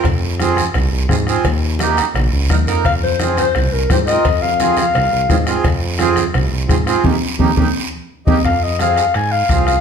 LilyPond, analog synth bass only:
\new Staff \with { instrumentName = "Analog synth bass" } { \clef bass \time 4/4 \key f \minor \tempo 4 = 172 f,2 c,8 c,8 aes,4 | ees,2 bes,,8 des,8 ees,8 f,8 | f,2 c,8 c,8 aes,4 | f,2 c,8 c,8 aes,4 |
f,2 c,8 c,8 aes,4 | ees,8 r8 ees,8 ees,8 r4. ees,8 | f,2 aes,4 c,4 | }